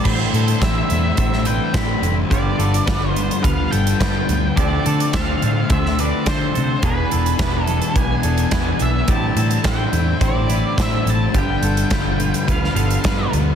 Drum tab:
CC |x---------------|----------------|----------------|----------------|
HH |--xxx-x-x-x-x-x-|x-xxx-xxx-xxx-x-|x-xxx-x-x-x-x-x-|x-xxx-xxx-xxx-x-|
SD |----o----o--o---|----o-------o---|----o----o--o---|----o-------o---|
BD |o---o---o---o---|o---o---o---o---|o---o---o---o---|o---o---o---o---|

CC |----------------|----------------|
HH |x-xxx-x-x-x-x-x-|x-xxx-xxx-xxx-x-|
SD |----o-------o---|----o----o--o---|
BD |o---o---o---o---|o---o---o---o---|